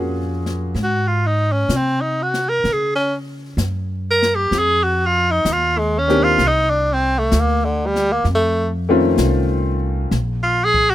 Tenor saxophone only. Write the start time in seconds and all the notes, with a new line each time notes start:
0.83 F#4
1.08 F4
1.27 D#4
1.52 C#4
1.77 C4
2.01 D#4
2.22 F#4
2.49 A#4
2.73 G#4
2.95 C#4
4.11 A#4
4.35 G4
4.58 G#4
4.83 F#4
5.06 F4
5.31 D#4
5.52 F4
5.78 G#3
5.98 C#4
6.24 F4
6.47 D#4
6.70 D4
6.93 C4
7.18 A3
7.40 A#3
7.65 D3
7.86 G3
8.12 A#3
8.35 A3
10.43 F4
10.64 G#4
10.90 F#4